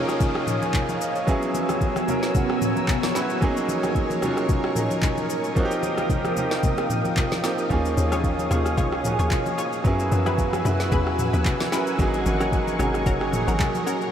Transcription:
Already playing: grand piano F3 A#3 C#4 D#4 G#4, string machine C#5 F5 G#5 D#6, downlifter
0.03 grand piano A#4
0.09 cross-stick, shaker
0.20 kick, low conga, shaker
0.35 cross-stick
0.47 mid tom, high conga, shaker
0.62 high conga, shaker
0.74 grand piano G#5, kick, clap, low conga, shaker
0.89 grand piano F5, high conga, shaker
1.01 grand piano D#5, shaker
1.15 grand piano C#5, shaker
1.27 grand piano F#3 B3 C#4 E4 G#4, string machine B3 C#5 E6, kick, shaker
1.42 shaker
1.54 high conga, shaker
1.69 cross-stick, high conga, shaker
1.81 kick, shaker
1.96 cross-stick, high conga, shaker
2.07 grand piano F#3 B3 C#4 E4 A#4 E5, low conga, shaker
2.23 snare, shaker
2.35 grand piano F#5, kick, low conga, shaker
2.50 cross-stick
2.61 mid tom, high conga, shaker
2.76 grand piano A#5, high conga, shaker
2.88 grand piano G#5, kick, clap, low conga, shaker
3.03 snare, high conga, shaker
3.14 grand piano F#3 B3 C#4 E4 F#4 B5, cross-stick, snare, shaker
3.30 shaker
3.41 grand piano F#3 A#3 C#4 D#4 G#4, string machine A#4 C#6, kick, shaker
3.57 shaker
3.69 high conga, shaker
3.83 cross-stick, high conga, shaker
3.95 kick, shaker
4.10 high conga, shaker
4.21 grand piano F#3 A#3 C#4 D#4 F4, cross-stick, low conga, shaker
4.37 cross-stick, shaker
4.49 kick, low conga, shaker
4.64 cross-stick
4.75 grand piano F#3 A#3 C#4 D#4 G#4, mid tom, high conga, shaker
4.90 high conga, shaker
5.02 kick, clap, low conga, shaker
5.18 high conga, shaker
5.30 shaker
5.44 shaker
5.55 grand piano F3 A#3 C4 D#4 F#4, string machine F5 G5 D#6, kick, shaker
5.65 grand piano G4
5.71 shaker
5.83 high conga, shaker
5.98 cross-stick, high conga, shaker
6.10 kick, low conga, shaker
6.25 cross-stick, high conga, shaker
6.36 grand piano F3 A#3 C4 D#4 G4, low conga, shaker
6.51 snare, shaker
6.63 kick, low conga, shaker
6.78 cross-stick, shaker
6.90 mid tom, high conga, shaker
7.05 high conga, shaker
7.17 kick, clap, low conga, shaker
7.32 snare, high conga, shaker
7.43 grand piano F3 A#3 C4 D#4 G4, cross-stick, snare, shaker
7.58 shaker
7.69 log drum bass D#2, grand piano F3 A#3 C#4 D#4 G#4, string machine C#5 G#5, kick, shaker
7.85 shaker
7.97 log drum bass D#2, high conga, shaker
8.12 synth stab F4 G#4 C#5, cross-stick, high conga, shaker
8.24 kick, shaker
8.39 high conga, shaker
8.50 log drum bass D#2, grand piano F3 A#3 C#4 D#4 G#4, synth stab F4 G#4 C#5, cross-stick, low conga, shaker
8.66 cross-stick, shaker
8.77 log drum bass C#2, synth stab F4 G#4 C#5, kick, low conga, shaker
8.93 cross-stick
9.03 grand piano F3 A#3 C#4 D#4 F#4, mid tom, high conga, shaker
9.13 grand piano G#4
9.19 log drum bass D#2, synth stab F4 G#4 C#5, high conga, shaker
9.31 kick, clap, low conga, shaker
9.46 high conga, shaker
9.58 synth stab F4 G#4 C#5, shaker
9.73 shaker
9.84 log drum bass F#2, grand piano F#3 B3 C#4 E4 G#4, string machine B4 F#5 E6, kick, shaker
10.00 shaker
10.11 log drum bass F#2, high conga, shaker
10.26 synth stab E4 G#4 B4, cross-stick, high conga, shaker
10.38 kick, shaker
10.53 cross-stick, high conga, shaker
10.64 log drum bass F#2, grand piano F#3 B3 C#4 E4 F#4, synth stab E4 G#4 B4, low conga, shaker
10.80 snare, shaker
10.92 log drum bass E2, synth stab E4 G#4 B4, kick, low conga, shaker
11.07 cross-stick
11.18 mid tom, high conga, shaker
11.33 log drum bass D#2, synth stab E4 G#4 B4, high conga, shaker
11.45 kick, clap, low conga, shaker
11.60 snare, high conga, shaker
11.71 grand piano F#3 B3 C#4 E4 A#4, synth stab E4 G#4 B4, cross-stick, snare, shaker
11.87 shaker
11.98 log drum bass G#1, grand piano F#3 A#3 C#4 D#4 G#4, string machine A#4 C#6, kick, shaker
12.14 shaker
12.26 log drum bass G#1, high conga, shaker
12.40 synth stab C#4 F#4 A#4, cross-stick, high conga, shaker
12.52 kick, shaker
12.67 high conga, shaker
12.78 log drum bass G#1, grand piano F#3 A#3 C#4 D#4 G#4, synth stab C#4 F#4 A#4, cross-stick, low conga, shaker
12.94 cross-stick, shaker
13.06 log drum bass F#1, synth stab C#4 F#4 A#4, kick, low conga, shaker
13.21 cross-stick
13.32 grand piano F#3 A#3 C#4 D#4 G#4, mid tom, high conga, shaker
13.47 log drum bass G#1, synth stab C#4 F#4 A#4, high conga, shaker
13.60 kick, clap, low conga, shaker
13.75 high conga, shaker
13.86 synth stab C#4 F#4 A#4, shaker
14.01 shaker

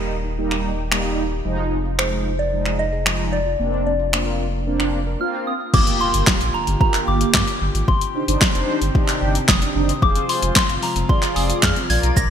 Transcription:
Already playing: sub bass D#1, analog polysynth G3 A#3 D#4, synth bell A#4
0.11 synth pluck G3
0.24 synth pluck D#4
0.38 analog polysynth G3 A#3 D#4
0.51 synth pluck G4, finger snap
0.65 synth pluck D#4
0.78 synth pluck G5
0.91 synth pluck G3, analog polysynth G3 A#3 D#4, finger snap
1.05 synth pluck D#4
1.32 synth pluck G4
1.45 sub bass F1, analog polysynth F3 G#3 D#4, synth pluck G#3
1.59 synth pluck D#4
1.72 synth pluck C4
1.85 synth pluck F4
1.99 analog polysynth F3 G#3 D#4, synth pluck D#4, synth bell C5, finger snap
2.12 synth pluck G#4
2.25 synth pluck G#3
2.39 synth pluck D#4, synth bell D5
2.52 analog polysynth F3 G#3 D#4
2.66 synth pluck F4, finger snap
2.79 synth pluck D#4, synth bell D#5
2.92 synth pluck G#4
3.06 analog polysynth F3 G#3 D#4, synth pluck G#3, finger snap
3.19 synth pluck D#4
3.33 synth bell D5
3.46 synth pluck F4
3.59 sub bass F1, analog polysynth A#3 C4 D4, synth pluck A#3
3.73 synth pluck D4
3.86 synth pluck C4, synth bell D5
4.00 synth pluck F4
4.13 analog polysynth A#3 C4 F4, synth pluck D4, finger snap
4.26 synth pluck A#4
4.40 synth pluck A#3
4.53 synth pluck D4
4.66 analog polysynth A#3 C4 D4
4.80 synth pluck F4, finger snap
4.93 synth pluck D4
5.07 synth pluck A#4
5.20 analog polysynth A#3 C4 F4, synth pluck A#3, synth bell F6
5.34 synth pluck D4
5.47 synth bell D#6
5.60 synth pluck F4
5.73 sub bass G1, analog synth pad D3 A#3 F4 G4, analog polysynth A#3 F4 G4, synth bell D6, kick, crash, impact
5.87 closed hi-hat
6.01 synth bell C6
6.14 sub bass G1, closed hi-hat
6.27 kick, snare, clap
6.41 sub bass A#1, closed hi-hat
6.54 synth bell A#5
6.67 sub bass G1, closed hi-hat
6.80 analog polysynth A#3 F4 G4, synth bell A#5, kick
6.94 clap, closed hi-hat
7.08 sub bass G1, synth bell D6
7.21 closed hi-hat
7.34 sub bass G2, synth bell D6, kick, snare, clap
7.48 closed hi-hat
7.61 sub bass G1
7.75 sub bass G#1, closed hi-hat
7.88 sub bass G1, analog synth pad C3 D#3 C4, synth bell C6, kick
8.01 closed hi-hat
8.14 analog polysynth D4 D#4 C5
8.28 sub bass G1, analog polysynth D4 D#4 C5, closed hi-hat
8.41 kick, snare, clap
8.55 sub bass F1, analog polysynth D4 D#4 C5, closed hi-hat
8.82 sub bass G1, closed hi-hat
8.95 analog polysynth D4 D#4 G4, kick
9.08 clap, closed hi-hat
9.22 sub bass G1
9.35 closed hi-hat
9.48 sub bass F1, synth bell D#6, kick, snare, clap
9.62 analog polysynth D4 D#4 D5, closed hi-hat
9.75 sub bass F#1, analog polysynth D4 D#4 C5
9.89 closed hi-hat
10.02 sub bass F1, analog synth pad F3 G#3 F4, synth pluck F3, analog polysynth F4 G#4 C5, synth bell D6, kick
10.16 synth pluck C4, closed hi-hat
10.29 synth pluck G#3, synth bell C6, open hi-hat
10.43 sub bass F1, synth pluck F4, closed hi-hat
10.56 synth bell C6, kick, snare, clap
10.69 sub bass G1, synth pluck F5, closed hi-hat
10.82 synth pluck F3, synth bell A#5, open hi-hat
10.96 sub bass F1, synth pluck C4, closed hi-hat
11.09 analog polysynth F4 G#4 D5, synth bell C6, kick
11.23 synth pluck F4, clap, closed hi-hat
11.36 sub bass F1, synth pluck C4, synth bell D#6, open hi-hat
11.50 synth pluck F5, closed hi-hat
11.63 sub bass F2, synth pluck F3, synth bell F6, kick, snare, clap
11.76 synth pluck C4, closed hi-hat
11.89 sub bass A#1, analog synth pad D3 A#3, analog polysynth F4 A#4 D5, synth bell G#6, open hi-hat
12.03 sub bass B1, synth pluck F4, closed hi-hat
12.16 sub bass A#1, synth pluck F3, synth bell A#6, kick, shaker

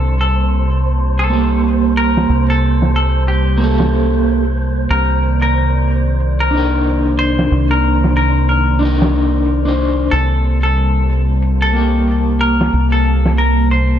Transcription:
Already playing: fingered electric bass C2, ambient pad C3 G3 A#3 A5, clean electric guitar A4, synth texture C5
0.01 closed hi-hat
0.21 clean electric guitar A4
0.33 closed hi-hat
0.66 closed hi-hat
0.98 closed hi-hat
1.19 clean electric guitar A4
1.30 clean electric guitar A#3 G4, closed hi-hat
1.63 open hi-hat
1.96 clean electric guitar A#4, closed hi-hat
2.17 snare
2.29 fingered electric bass C2, closed hi-hat
2.48 clean electric guitar A4, closed hi-hat
2.61 closed hi-hat
2.82 snare
2.94 clean electric guitar A4, closed hi-hat
3.13 closed hi-hat
3.27 clean electric guitar G4, closed hi-hat
3.57 clean electric guitar A#3 G4, closed hi-hat
3.64 clean electric guitar A4
3.80 snare
3.92 closed hi-hat
4.24 closed hi-hat
4.44 closed hi-hat
4.57 closed hi-hat
4.89 fingered electric bass C2, ambient pad D#3 D5, clean electric guitar A#4, closed hi-hat
5.22 closed hi-hat
5.42 clean electric guitar A#4
5.55 closed hi-hat
5.88 closed hi-hat
6.20 closed hi-hat
6.40 clean electric guitar A#4
6.51 clean electric guitar D4 D#4, closed hi-hat
6.57 clean electric guitar A#4
6.86 open hi-hat
7.18 clean electric guitar C5, closed hi-hat
7.39 snare
7.51 fingered electric bass C2, closed hi-hat
7.70 clean electric guitar A#4, closed hi-hat
7.83 closed hi-hat
8.04 snare
8.16 clean electric guitar A#4, closed hi-hat
8.35 closed hi-hat
8.49 clean electric guitar A#4, closed hi-hat
8.79 clean electric guitar D4 D#4, closed hi-hat
8.85 clean electric guitar A#4
9.02 snare
9.14 closed hi-hat
9.46 closed hi-hat
9.65 clean electric guitar D4 D#4 C5, closed hi-hat
9.79 closed hi-hat
10.11 fingered electric bass C2, ambient pad C3 G3 A#3 A5, clean electric guitar A4, closed hi-hat
10.44 closed hi-hat
10.63 clean electric guitar A4
10.77 closed hi-hat
11.10 closed hi-hat
11.42 closed hi-hat
11.62 clean electric guitar A4
11.73 clean electric guitar A#3 G4, closed hi-hat
12.07 open hi-hat
12.40 clean electric guitar A#4, closed hi-hat
12.61 snare
12.73 fingered electric bass C2, closed hi-hat
12.92 clean electric guitar A4, closed hi-hat
13.05 closed hi-hat
13.26 snare
13.37 clean electric guitar A#4, closed hi-hat
13.57 closed hi-hat
13.71 clean electric guitar C5, closed hi-hat

